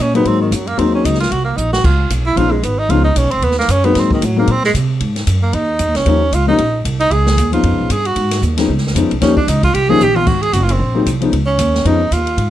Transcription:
0.00 A#2 C#4
0.14 F#3 G#3 A#3 B3 C4 D#4, ride
0.25 G#2 C4, kick, ride
0.41 D#3
0.51 F#2 F#3, kick, hi-hat pedal, ride
0.67 A#3, ride
0.77 D#2 F#3 G#3 A#3 C4 D#4, kick, ride
0.94 C#4
1.04 C#2 D#4, kick, hi-hat pedal, ride
1.14 snare
1.20 F4, snare, ride
1.31 C2 F#4, kick, ride
1.45 A#3
1.57 A#1 D#4, hi-hat pedal
1.73 F#4, snare
1.84 C#2 F4, kick, crash
2.10 B1, kick, hi-hat pedal, ride
2.26 E4
2.36 A#1 F3 G#3 B3 C#4 D#4 F4, kick, ride
2.51 G#3
2.63 G#1 B3, kick, hi-hat pedal, ride
2.79 D#4
2.89 C#2 F3 G#3 B3 C#4 D#4 F4, kick, ride
3.04 D#4
3.16 B1 C#4, kick, hi-hat pedal, ride
3.24 G#1
3.31 F1 C4, ride
3.42 D#2 B3, kick, ride
3.51 snare
3.59 A#3, snare
3.68 F#2 C#4, kick, hi-hat pedal, ride
3.84 F#3 G#3 A#3 B3 C4 D#4, ride
3.95 G#2 C4, kick, snare, ride
4.11 D#3, kick
4.21 A2 F#3, kick, hi-hat pedal, ride
4.36 F#3 G#3 A#3 C4 D#4
4.47 A#2 C4, kick, ride
4.64 G#3, snare
4.74 C3, kick, hi-hat pedal, ride
5.00 G#2, kick, ride
5.16 snare, ride
5.27 F#2, kick, hi-hat pedal, ride
5.43 A#3
5.53 D#2 D#4, kick, ride
5.79 F2, kick, hi-hat pedal, ride
5.88 D#2
5.95 C2 C#4, snare, ride
6.05 D#2 F3 G3 A#3 C#4 D#4, kick, ride
6.32 C#2 F4, kick, hi-hat pedal, ride
6.47 F3 G3 A#3 C#4 D#4
6.58 A#1, kick, ride
6.85 C2, kick, hi-hat pedal, ride
7.00 D#4, ride
7.10 C#2 G#4, kick, ride
7.27 snare
7.37 D#2, kick, hi-hat pedal, ride
7.52 F3 G#3 B3 C#4 D#4 F4, ride
7.63 F2, kick, ride
7.72 C#2
7.81 B1
7.89 G2 G#4, kick, hi-hat pedal, ride
8.05 F#4, ride
8.16 G#2, kick, ride
8.31 snare, ride
8.42 D#2, kick, hi-hat pedal
8.57 F3 G#3 B3 C#4 D#4, snare, ride
8.69 C#2, kick
8.78 snare
8.87 snare
8.95 F2 F3 G#3 B3 C#4 D#4, kick, hi-hat pedal, ride
9.03 C#2
9.11 B1, ride
9.21 D#2 F3 G3 A#3 C#4 D#4, kick, snare, ride
9.37 D4, kick
9.48 C#2 D#4, kick, hi-hat pedal, ride
9.63 F4, kick, ride
9.74 C2 G4, kick, ride
9.89 F3 G3 A#3 C#4 D#4 G#4
9.99 A#1 G4, hi-hat pedal, mid tom
10.16 F4, mid tom
10.26 G#1 F#4, kick, crash
10.42 G#4, ride
10.53 F#1 F#4, kick, hi-hat pedal, ride
10.63 F4
10.69 C4, ride
10.79 A#1, kick
10.94 F#3 G#3 A#3 C4 D#4
11.06 C2, kick, hi-hat pedal, ride
11.21 F3 G#3 B3 C#4 D#4, ride
11.32 C#2, kick, ride
11.46 C#4
11.58 D#2, kick, hi-hat pedal, ride
11.75 snare
11.85 F2 F3 G#3 B3 C#4 D#4, kick, ride
12.11 D#2 F4, kick, hi-hat pedal, ride
12.27 ride
12.37 G#2, kick, ride

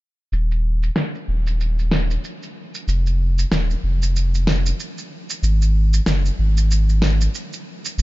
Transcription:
0.32 D#1, shaker
0.51 shaker
0.83 shaker
0.96 snare, shaker
1.15 shaker
1.28 D#1
1.47 shaker
1.61 shaker
1.79 shaker
1.92 snare
2.11 shaker
2.24 shaker
2.43 shaker
2.75 shaker
2.88 F1, shaker
3.07 shaker
3.39 shaker
3.51 D#1, snare, shaker
3.71 shaker
3.83 F1
4.03 shaker
4.16 shaker
4.35 shaker
4.47 snare
4.66 shaker
4.80 shaker
4.98 shaker
5.30 shaker
5.43 G#1, shaker
5.62 shaker
5.94 shaker
6.06 F#1, snare, shaker
6.26 shaker
6.39 G#1
6.58 shaker
6.71 shaker
6.89 shaker
7.02 snare
7.21 shaker
7.35 shaker
7.53 shaker
7.85 shaker
7.98 F#1, shaker

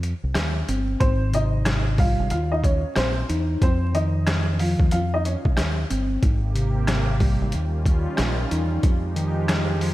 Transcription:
Already playing: F2
0.03 closed hi-hat
0.24 C2
0.34 D#2, cross-stick, snare, closed hi-hat
0.68 G1 C4, closed hi-hat
1.00 G#1 G#2 C4 C5, kick, closed hi-hat
1.32 C3 D#4 D#5, closed hi-hat
1.65 cross-stick, snare, closed hi-hat
1.98 G3 F4 F5, kick, open hi-hat
2.19 G#1
2.30 D#2 F4 F5, closed hi-hat
2.52 D#4 D#5
2.63 C#4 C#5, kick, closed hi-hat
2.96 A#1 C4 C5, cross-stick, snare, closed hi-hat
3.29 E2 D#4, closed hi-hat
3.62 F2 C4 C5, kick, closed hi-hat
3.93 D#3 D#4 D#5, closed hi-hat
4.27 cross-stick, snare, closed hi-hat
4.59 F3 F4 F5, open hi-hat
4.80 D#2, kick
4.91 F2 F4 F5, closed hi-hat
5.14 D#4 D#5
5.25 C#4 C#5, closed hi-hat
5.45 C2, kick
5.57 D#2, cross-stick, snare, closed hi-hat
5.90 G1 C4, closed hi-hat
6.22 G#1 G#2 C3 A#3 G4, kick, closed hi-hat
6.55 C3, closed hi-hat
6.87 cross-stick, snare, closed hi-hat
7.20 G3, kick, open hi-hat
7.41 G#1
7.52 D#2 D#3 G3 C#4 F4, closed hi-hat
7.85 kick, closed hi-hat
8.17 A#1, cross-stick, snare, closed hi-hat
8.51 E2 D#4, closed hi-hat
8.83 F2 F3 G#3 D#4 G4, kick, closed hi-hat
9.15 D#3, closed hi-hat
9.48 cross-stick, snare, closed hi-hat
9.81 F3, open hi-hat

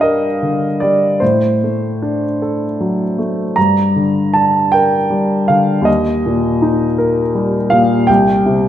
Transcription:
Already playing: G2 G3 D4 F5 G5
0.01 A#4 D#5
0.42 D3
0.80 G3 D5
1.20 A2 C5
1.63 A3
2.02 D4
2.42 A4
2.80 F#3
3.19 A3
3.56 G2 A#5
3.96 D3
4.34 D4 A5
4.72 A#4 G5
5.10 G3
5.48 D3 F5
5.81 D#2 D#5
6.26 A#2
6.62 D#4
6.98 A#4
7.34 G3
7.70 A#2 F5
8.07 C2 G5
8.46 C3

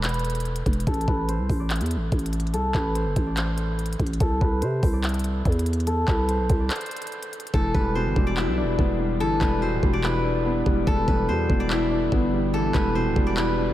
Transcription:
Already playing: E1 A4 D5
0.04 B4, clap, closed hi-hat
0.09 closed hi-hat
0.14 closed hi-hat
0.19 closed hi-hat
0.24 closed hi-hat
0.30 closed hi-hat
0.35 closed hi-hat
0.40 closed hi-hat
0.45 closed hi-hat
0.56 closed hi-hat
0.66 E1, kick, closed hi-hat
0.73 closed hi-hat
0.80 closed hi-hat
0.87 A1 A4, kick, closed hi-hat
0.94 closed hi-hat
1.01 closed hi-hat
1.08 A1 B4, kick
1.29 C5, closed hi-hat
1.39 C2
1.49 A1, kick, open hi-hat
1.60 D5
1.70 E5, clap, closed hi-hat
1.76 closed hi-hat
1.81 E2, closed hi-hat
1.86 closed hi-hat
1.91 closed hi-hat
1.96 A1
2.12 A1, kick, closed hi-hat
2.19 closed hi-hat
2.26 closed hi-hat
2.33 closed hi-hat
2.40 closed hi-hat
2.47 closed hi-hat
2.54 C2 A4, closed hi-hat
2.74 A1 B4, kick, clap
2.95 C5, closed hi-hat
3.06 G1
3.16 A1, kick, closed hi-hat
3.27 D5
3.37 C5, clap, closed hi-hat
3.58 closed hi-hat
3.79 closed hi-hat
3.86 closed hi-hat
3.93 closed hi-hat
4.00 A1, kick, closed hi-hat
4.06 closed hi-hat
4.13 closed hi-hat
4.20 C2 A4, kick, closed hi-hat
4.41 C2 B4, kick
4.62 C3 C5, closed hi-hat
4.83 C2, kick, open hi-hat
4.93 D5
5.04 E5, clap, closed hi-hat
5.09 closed hi-hat
5.14 closed hi-hat
5.19 closed hi-hat
5.24 closed hi-hat
5.45 E2, kick, closed hi-hat
5.52 closed hi-hat
5.59 closed hi-hat
5.66 closed hi-hat
5.73 closed hi-hat
5.80 closed hi-hat
5.87 A4, closed hi-hat
6.08 C2 B4, kick, clap
6.29 C5, closed hi-hat
6.39 B1
6.49 C2, kick, closed hi-hat
6.60 D5
6.70 C5, clap, closed hi-hat
6.76 closed hi-hat
6.81 closed hi-hat
6.86 closed hi-hat
6.91 closed hi-hat
6.96 closed hi-hat
7.02 closed hi-hat
7.07 closed hi-hat
7.12 closed hi-hat
7.23 closed hi-hat
7.33 closed hi-hat
7.40 closed hi-hat
7.47 closed hi-hat
7.54 E1 E3 A4, kick
7.75 E1 G3 B4, kick
7.95 B2 C5
8.06 G1
8.16 E1 D4, kick
8.27 D5
8.37 E4 E5, clap
8.47 B1
8.58 D4
8.63 E1
8.79 E1 B3, kick
9.00 G3
9.20 G1 E3 A4
9.41 E1 G3 B4, kick, clap
9.62 B2 C5
9.72 D1
9.83 E1 D4, kick
9.93 D5
10.04 E4 B4, clap
10.25 D4
10.46 B3
10.66 E1 G3, kick
10.87 E1 E3 A4, kick
11.08 E1 G3 B4, kick
11.29 E2 B2 C5
11.50 E1 D4, kick
11.60 D5
11.70 E4 E5, clap
11.91 D4
12.12 G1 B3, kick
12.33 G3
12.54 E3 A4
12.74 E1 G3 B4, kick, clap
12.95 B2 C5
13.06 D1
13.16 E1 D4, kick
13.27 D5
13.37 E4 B4, clap
13.58 D4

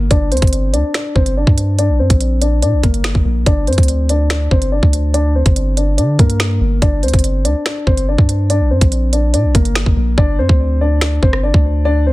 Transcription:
0.11 G1 D4 D5, kick, closed hi-hat
0.32 D2 C4 C5, closed hi-hat
0.37 closed hi-hat
0.42 G1, kick, closed hi-hat
0.47 closed hi-hat
0.53 closed hi-hat
0.73 D2 D4 D5, closed hi-hat
0.94 D4 D5, finger snap, snare, closed hi-hat
1.15 G1 C4 C5, kick
1.26 closed hi-hat
1.37 D4 D5
1.47 G2, kick
1.58 closed hi-hat
1.79 D4 D5, closed hi-hat
1.89 A#1
1.99 G2 C4 C5
2.10 A#1, kick, closed hi-hat
2.21 closed hi-hat
2.41 D4 D5, closed hi-hat
2.62 A#2 D4 D5, closed hi-hat
2.73 A#1
2.83 G1 A#3 A#4, kick, closed hi-hat
2.94 closed hi-hat
3.04 finger snap, snare
3.15 G1, kick
3.25 A#1
3.46 G1 D4 D5, kick, closed hi-hat
3.67 G2 C4 C5, closed hi-hat
3.73 closed hi-hat
3.78 D2, kick, closed hi-hat
3.83 closed hi-hat
3.88 closed hi-hat
4.09 D4 D5, closed hi-hat
4.30 D4 D5, finger snap, snare, closed hi-hat
4.51 G1 C4 C5, kick
4.62 closed hi-hat
4.72 D4 D5
4.83 D2, kick
4.93 closed hi-hat
5.14 D4 D5, closed hi-hat
5.35 C4 C5
5.46 G1, kick, closed hi-hat
5.56 closed hi-hat
5.77 D4 D5, closed hi-hat
5.98 D3 D4 D5, closed hi-hat
6.19 G2 A#3 A#4, kick, closed hi-hat
6.30 closed hi-hat
6.40 finger snap, snare
6.61 G1
6.82 G1 D4 D5, kick, closed hi-hat
7.03 D2 C4 C5, closed hi-hat
7.08 closed hi-hat
7.14 G1, kick, closed hi-hat
7.19 closed hi-hat
7.24 closed hi-hat
7.45 D2 D4 D5, closed hi-hat
7.66 D4 D5, finger snap, snare, closed hi-hat
7.87 G1 C4 C5, kick
7.97 closed hi-hat
8.09 D4 D5
8.18 G2, kick
8.29 closed hi-hat
8.50 D4 D5, closed hi-hat
8.60 A#1
8.71 G2 C4 C5
8.81 A#1, kick, closed hi-hat
8.92 closed hi-hat
9.13 D4 D5, closed hi-hat
9.34 A#2 D4 D5, closed hi-hat
9.44 A#1
9.54 G1 A#3 A#4, kick, closed hi-hat
9.65 closed hi-hat
9.75 finger snap, snare
9.86 G1, kick
9.97 A#1
10.18 G1 D4 D5, kick
10.39 G2 C4 C5
10.49 D2, kick
10.81 D4 D5
11.01 finger snap, snare
11.23 G1 C4 C5, kick
11.33 cross-stick
11.43 D4 D5
11.54 D2, kick
11.85 D4 D5
12.07 C4 C5

